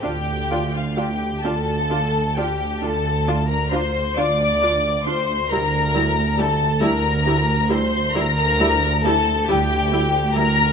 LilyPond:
<<
  \new Staff \with { instrumentName = "Violin section" } { \time 12/8 \key d \minor \tempo 4. = 45 g''8. f''16 g''8 a''4 g''8 a''8. bes''16 c'''8 d'''4 c'''8 | bes''4 a''8 bes''4 c'''8 bes''4 a''8 g''4 bes''8 | }
  \new Staff \with { instrumentName = "Violin section" } { \time 12/8 \key d \minor g'8. f'16 g'8 a'4 g'8 a'8. bes'16 c''8 d''4 c''8 | bes'4 a'8 bes'4 c''8 bes'4 a'8 g'4 bes'8 | }
  \new Staff \with { instrumentName = "Viola section" } { \time 12/8 \key d \minor <d' f'>8 <d' f'>8 <d' f'>8 <d' f'>8 <d' f'>8 <d' f'>8 <d' f'>8 <d' f'>8 <d' f'>8 <d' f'>8 <d' f'>8 <d' f'>8 | <g e'>8 <g e'>8 <g e'>8 <g e'>8 <g e'>8 <g e'>8 <g e'>8 <g e'>8 <g e'>8 <g e'>8 <g e'>8 <g e'>8 | }
  \new Staff \with { instrumentName = "Cello section" } { \clef bass \time 12/8 \key d \minor d,4. d,4. d,4. d,4. | d,4. d,4. d,4. d,4. | }
  \new Staff \with { instrumentName = "Double bass section" } { \clef bass \time 12/8 \key d \minor d,4. d,4. d,4. d,4. | d,4. d,4. d,4. d,4. | }
>>